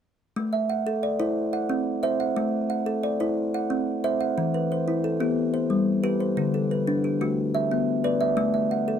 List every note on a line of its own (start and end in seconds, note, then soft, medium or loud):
0.36 0.70 A3 medium
0.53 1.03 E5 medium
0.70 1.20 F#5 medium
0.87 1.20 A4 medium
1.03 1.53 D5 medium
1.20 1.36 E4 medium
1.20 1.53 C5 medium
1.53 2.03 F#5 medium
1.69 2.03 C4 medium
2.03 2.37 C5 medium
2.03 2.53 E5 medium
2.20 2.53 F#5 medium
2.36 2.70 A3 medium
2.70 3.20 F#5 medium
2.86 3.20 A4 medium
3.03 3.54 D5 medium
3.20 3.37 E4 medium
3.20 3.54 C5 medium
3.54 4.04 F#5 medium
3.70 4.04 C4 medium
4.04 4.37 C5 medium
4.04 4.54 E5 medium
4.21 4.54 F#5 medium
4.38 4.71 E3 medium
4.54 5.04 B4 medium
4.72 5.21 C5 medium
4.88 5.21 E4 medium
5.04 5.54 A4 medium
5.20 5.37 B3 medium
5.20 5.54 G4 medium
5.54 6.04 C5 medium
5.70 6.04 G3 medium
6.04 6.37 G4 medium
6.04 6.54 B4 medium
6.20 6.54 C5 medium
6.37 6.70 D3 medium
6.54 7.04 A4 medium
6.71 7.21 B4 medium
6.87 7.21 D4 medium
7.04 7.54 G4 medium
7.21 7.38 A3 medium
7.21 7.54 F#4 medium
7.55 8.04 E5 medium
7.71 8.04 B3 medium
8.04 8.37 B4 medium
8.04 8.54 D5 medium
8.21 8.53 E5 medium
8.37 8.70 A3 medium
8.54 8.99 E5 soft
8.71 8.99 F#5 medium
8.88 8.99 A4 medium